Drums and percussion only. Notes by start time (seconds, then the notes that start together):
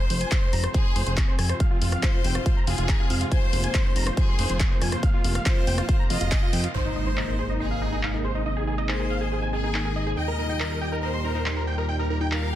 0.10 open hi-hat
0.21 closed hi-hat
0.32 kick, clap, closed hi-hat
0.53 open hi-hat
0.64 cross-stick, closed hi-hat
0.74 kick, closed hi-hat
0.96 open hi-hat
1.07 closed hi-hat
1.17 kick, clap, closed hi-hat
1.39 cross-stick, open hi-hat
1.49 cross-stick, closed hi-hat
1.60 kick, closed hi-hat
1.82 open hi-hat
1.92 cross-stick, closed hi-hat
2.03 kick, clap, closed hi-hat
2.24 open hi-hat
2.35 cross-stick, closed hi-hat
2.46 kick, closed hi-hat
2.67 open hi-hat
2.78 closed hi-hat
2.89 kick, clap, closed hi-hat
3.10 open hi-hat
3.21 closed hi-hat
3.32 kick, closed hi-hat
3.53 open hi-hat
3.64 closed hi-hat
3.74 kick, clap, closed hi-hat
3.96 open hi-hat
4.07 cross-stick, closed hi-hat
4.17 kick, closed hi-hat
4.39 open hi-hat
4.49 closed hi-hat
4.60 kick, clap, closed hi-hat
4.82 cross-stick, open hi-hat
4.92 cross-stick, closed hi-hat
5.03 kick, closed hi-hat
5.24 open hi-hat
5.35 cross-stick, closed hi-hat
5.46 kick, clap, closed hi-hat
5.67 open hi-hat
5.78 cross-stick, closed hi-hat
5.89 kick, closed hi-hat
6.10 open hi-hat
6.21 closed hi-hat
6.32 kick, clap, closed hi-hat
6.53 open hi-hat
6.64 closed hi-hat
7.17 clap
8.03 clap
8.89 clap
9.74 clap
10.60 clap
11.46 clap
12.32 clap